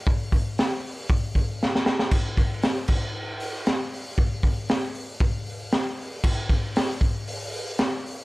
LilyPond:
\new DrumStaff \with { instrumentName = "Drums" } \drummode { \time 4/4 \tempo 4 = 117 <hho bd>8 <hho bd>8 <hho sn>8 hho8 <hho bd>8 <hho bd>8 sn16 sn16 sn16 sn16 | <cymc bd>8 <hho bd>8 <hho sn>8 <cymc bd>8 r8 hho8 <hho sn>8 hho8 | <hho bd>8 <hho bd>8 <hho sn>8 hho8 <hho bd>8 hho8 <hho sn>8 hho8 | <cymc bd>8 <hho bd>8 <hho sn>8 <hho bd>8 hho8 hho8 <hho sn>8 hho8 | }